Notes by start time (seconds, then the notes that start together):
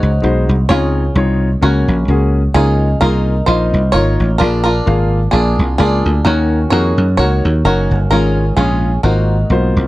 Already playing: C#4 D#4 F#4 C5
0.03 C#2
0.22 B1 G#3 D#4 F#4 C5
0.49 C2
0.69 C#2 C#3 C4 D#4 F4 G#4 C#5
1.15 C2 C4 D#4 F4 C#5
1.61 C#2 C#3 A#3 C#4 F#4 A#4 C#5
1.88 A#1
2.08 C#2 A#3 C#4 F#4 G#4
2.54 C#2 C#3 A#3 D#4 F4 G#4 C#5
3.00 C2 A#3 D#4 F4 G#4 A#4
3.46 A#1 A#3 D#4 F4 C5 D#5
3.74 C2
3.92 G#1 A#3 D#4 F4 A#4 C#5
4.20 A1
4.38 A#1 A#2 A#3 D4 F4 G#4 A#4 D5
4.64 D4 F4 A#4
4.86 G#1 A#3 F4 G#4 F5
5.31 A#1 A#3 D4 F4 G#4 D5
5.59 C2
5.78 C#2 A#3 D4 F4 G#4 D5
6.06 D2
6.25 D#2 D#3 A#3 C#4 D#4 F#4 A#4 C#5
6.70 F2 A#3 D#4 F#4 G#4 A#4 C#5
6.98 F#2
7.17 C#2 A#3 D#4 F#4 A#4 C#5
7.45 D#2
7.65 F#1 A#3 C#4 D#4 F#4 A#4 C#5
7.91 G1
8.11 G#1 G#2 G#3 C#4 F4 A#4 C#5
8.57 A#1 G#3 C#4 F4 G#4 C#5
9.03 G#1 G#2 A#3 D#4 F4 F#4 A#4 C5
9.50 B1 A#3 F4 F#4 C5
9.76 C2